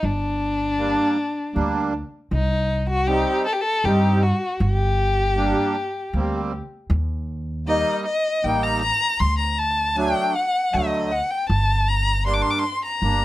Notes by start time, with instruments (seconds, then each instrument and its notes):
0.03 upright bass G1, violin D4
0.78 accordion G3 A#3 D4
1.54 upright bass D2, accordion G3 A#3 D4
2.31 upright bass C2, violin D#4
2.90 violin F#4
3.07 accordion G3 C4 D#4, violin G4
3.46 violin A4
3.53 violin G4
3.61 violin A4
3.84 upright bass G2, accordion G3 C4 D#4, violin G4
4.23 violin F#4
4.60 upright bass G1, violin G4
5.36 accordion G3 A#3 D4
6.13 upright bass D2, accordion G3 A#3 C4
6.90 upright bass D#2
7.67 accordion G3 A#3 D#4, violin D#5
8.06 violin D#5
8.44 upright bass A1, accordion G3 A#3 D#4, violin G5
8.63 violin A#5
8.82 violin A#5
9.20 upright bass D2, violin C6
9.39 violin A#5
9.58 violin A5
9.96 accordion F#3 A3 D4, violin G5
10.36 violin F#5
10.73 upright bass D2, accordion D3 F#3 A3, violin D#5
11.12 violin F#5
11.31 violin G5
11.49 upright bass G1, violin A5
11.89 violin A#5
12.25 accordion G3 A#3 D4, violin C6
12.34 violin D6
12.42 violin C6
12.51 violin D6
12.59 violin C6
12.85 violin A#5
13.02 upright bass G1, accordion G3 A#3 D4